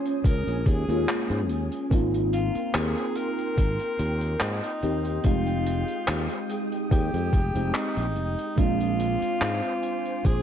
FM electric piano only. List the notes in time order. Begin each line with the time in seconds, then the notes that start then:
Already playing: G#3 A#3 C#4 F4
0.88 G#3 A#3 C#4 F4
1.90 A#3 C4 D#4 F4
4.83 A#3 C4 D#4 G4
5.23 G#3 C4 D#4 G4
7.54 G#3 C4 D#4 G4
8.56 G#3 C4 D4 F4